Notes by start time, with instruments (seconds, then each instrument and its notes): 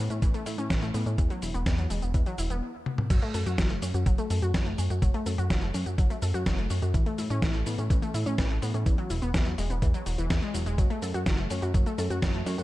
0.10 analog synth bass A2, synth arpeggio sound C#4, closed hi-hat, cabasa
0.22 analog synth bass A1, synth arpeggio sound E3, kick, closed hi-hat, cabasa
0.34 synth arpeggio sound A3, closed hi-hat, cabasa
0.46 analog synth bass A2, synth arpeggio sound E4, open hi-hat, cabasa
0.58 analog synth bass A2, synth arpeggio sound C#4, cabasa
0.70 analog synth bass A1, synth arpeggio sound E3, kick, snare, closed hi-hat, cabasa
0.82 synth arpeggio sound A3, closed hi-hat, cabasa
0.94 analog synth bass A2, synth arpeggio sound B3, open hi-hat, cabasa
1.06 analog synth bass A2, synth arpeggio sound C#4, closed hi-hat, cabasa
1.18 analog synth bass E2, synth arpeggio sound E3, kick, closed hi-hat, cabasa
1.30 synth arpeggio sound F#3, closed hi-hat, cabasa
1.42 analog synth bass E1, synth arpeggio sound E4, open hi-hat, cabasa
1.54 analog synth bass E1, synth arpeggio sound B3, closed hi-hat, cabasa
1.66 analog synth bass E2, synth arpeggio sound E3, kick, snare, closed hi-hat, cabasa
1.78 synth arpeggio sound F#3, closed hi-hat, cabasa
1.90 analog synth bass E1, synth arpeggio sound G#3, open hi-hat, cabasa
2.02 analog synth bass E1, synth arpeggio sound B3, closed hi-hat, cabasa
2.14 analog synth bass E2, synth arpeggio sound E3, kick, closed hi-hat, cabasa
2.26 synth arpeggio sound F#3, closed hi-hat, cabasa
2.38 analog synth bass E1, synth arpeggio sound E4, open hi-hat, cabasa
2.50 analog synth bass E1, synth arpeggio sound B3, closed hi-hat, cabasa
2.86 high tom
2.98 mid tom
3.10 analog synth bass F#1, synth arpeggio sound F#3, kick, closed hi-hat, crash, cabasa
3.22 synth arpeggio sound A3, closed hi-hat
3.34 analog synth bass F#2, synth arpeggio sound A4, open hi-hat, cabasa
3.46 analog synth bass F#2, synth arpeggio sound F#4, closed hi-hat, cabasa
3.58 analog synth bass F#1, synth arpeggio sound F#3, kick, snare, closed hi-hat, cabasa
3.70 synth arpeggio sound A3, closed hi-hat
3.82 analog synth bass F#2, synth arpeggio sound C#4, open hi-hat, cabasa
3.94 analog synth bass F#2, synth arpeggio sound F#4, closed hi-hat, cabasa
4.06 analog synth bass F#1, synth arpeggio sound F#3, kick, closed hi-hat, cabasa
4.18 synth arpeggio sound A3, closed hi-hat, cabasa
4.30 analog synth bass F#2, synth arpeggio sound A4, open hi-hat, cabasa
4.42 analog synth bass F#2, synth arpeggio sound F#4, closed hi-hat, cabasa
4.54 analog synth bass F#1, synth arpeggio sound F#3, kick, snare, closed hi-hat, cabasa
4.66 synth arpeggio sound A3, closed hi-hat
4.78 analog synth bass F#2, synth arpeggio sound C#4, open hi-hat, cabasa
4.90 analog synth bass F#2, synth arpeggio sound F#4, closed hi-hat, cabasa
5.02 analog synth bass F#1, synth arpeggio sound F#3, kick, closed hi-hat, cabasa
5.14 synth arpeggio sound A3, closed hi-hat
5.26 analog synth bass F#2, synth arpeggio sound A4, open hi-hat, cabasa
5.38 analog synth bass F#2, synth arpeggio sound F#4, closed hi-hat, cabasa
5.50 analog synth bass F#1, synth arpeggio sound F#3, kick, snare, closed hi-hat, cabasa
5.62 synth arpeggio sound A3, closed hi-hat
5.74 analog synth bass F#2, synth arpeggio sound C#4, open hi-hat, cabasa
5.86 analog synth bass F#2, synth arpeggio sound F#4, closed hi-hat, cabasa
5.98 analog synth bass F#1, synth arpeggio sound F#3, kick, closed hi-hat, cabasa
6.10 synth arpeggio sound A3, closed hi-hat, cabasa
6.22 analog synth bass F#2, synth arpeggio sound A4, open hi-hat, cabasa
6.34 analog synth bass F#2, synth arpeggio sound F#4, closed hi-hat, cabasa
6.46 analog synth bass F#1, synth arpeggio sound F#3, kick, snare, closed hi-hat, cabasa
6.58 synth arpeggio sound A3, closed hi-hat
6.70 analog synth bass F#2, synth arpeggio sound C#4, open hi-hat, cabasa
6.82 analog synth bass F#2, synth arpeggio sound F#4, closed hi-hat, cabasa
6.94 analog synth bass A1, synth arpeggio sound E3, kick, closed hi-hat, cabasa
7.06 synth arpeggio sound A3, closed hi-hat
7.18 analog synth bass A2, synth arpeggio sound E4, open hi-hat, cabasa
7.30 analog synth bass A2, synth arpeggio sound C#4, closed hi-hat, cabasa
7.42 analog synth bass A1, synth arpeggio sound E3, kick, snare, closed hi-hat, cabasa
7.54 synth arpeggio sound A3, closed hi-hat
7.66 analog synth bass A2, synth arpeggio sound B3, open hi-hat, cabasa
7.78 analog synth bass A2, synth arpeggio sound C#4, closed hi-hat, cabasa
7.90 analog synth bass A1, synth arpeggio sound E3, kick, closed hi-hat, cabasa
8.02 synth arpeggio sound A3, closed hi-hat, cabasa
8.14 analog synth bass A2, synth arpeggio sound E4, open hi-hat, cabasa
8.26 analog synth bass A2, synth arpeggio sound C#4, closed hi-hat, cabasa
8.38 analog synth bass A1, synth arpeggio sound E3, kick, snare, closed hi-hat, cabasa
8.50 synth arpeggio sound A3, closed hi-hat
8.62 analog synth bass A2, synth arpeggio sound B3, open hi-hat, cabasa
8.74 analog synth bass A2, synth arpeggio sound C#4, closed hi-hat, cabasa
8.86 analog synth bass E2, synth arpeggio sound E3, kick, closed hi-hat, cabasa
8.98 synth arpeggio sound F#3, closed hi-hat
9.10 analog synth bass E1, synth arpeggio sound E4, open hi-hat, cabasa
9.22 analog synth bass E1, synth arpeggio sound B3, closed hi-hat, cabasa
9.34 analog synth bass E2, synth arpeggio sound E3, kick, snare, closed hi-hat, cabasa
9.46 synth arpeggio sound F#3, closed hi-hat
9.58 analog synth bass E1, synth arpeggio sound G#3, open hi-hat, cabasa
9.70 analog synth bass E1, synth arpeggio sound B3, closed hi-hat, cabasa
9.82 analog synth bass E2, synth arpeggio sound E3, kick, closed hi-hat, cabasa
9.94 synth arpeggio sound F#3, closed hi-hat, cabasa
10.06 analog synth bass E1, synth arpeggio sound F#3, open hi-hat, cabasa
10.18 analog synth bass E1, synth arpeggio sound E3, closed hi-hat, cabasa
10.30 analog synth bass E2, synth arpeggio sound E3, kick, snare, closed hi-hat, cabasa
10.42 synth arpeggio sound G#3, closed hi-hat
10.54 analog synth bass E1, synth arpeggio sound F#3, open hi-hat, cabasa
10.66 analog synth bass E1, synth arpeggio sound G#3, closed hi-hat, cabasa
10.78 analog synth bass F#1, synth arpeggio sound F#3, kick, closed hi-hat, cabasa
10.90 synth arpeggio sound A3, closed hi-hat
11.02 analog synth bass F#2, synth arpeggio sound A4, open hi-hat, cabasa
11.14 analog synth bass F#2, synth arpeggio sound F#4, closed hi-hat, cabasa
11.26 analog synth bass F#1, synth arpeggio sound F#3, kick, snare, closed hi-hat, cabasa
11.38 synth arpeggio sound A3, closed hi-hat
11.50 analog synth bass F#2, synth arpeggio sound C#4, open hi-hat, cabasa
11.62 analog synth bass F#2, synth arpeggio sound F#4, closed hi-hat, cabasa
11.74 analog synth bass F#1, synth arpeggio sound F#3, kick, closed hi-hat, cabasa
11.86 synth arpeggio sound A3, closed hi-hat, cabasa
11.98 analog synth bass F#2, synth arpeggio sound A4, open hi-hat, cabasa
12.10 analog synth bass F#2, synth arpeggio sound F#4, closed hi-hat, cabasa
12.22 analog synth bass F#1, synth arpeggio sound F#3, kick, snare, closed hi-hat, cabasa
12.34 synth arpeggio sound A3, closed hi-hat
12.46 analog synth bass F#2, synth arpeggio sound C#4, open hi-hat, cabasa
12.58 analog synth bass F#2, synth arpeggio sound F#4, closed hi-hat, cabasa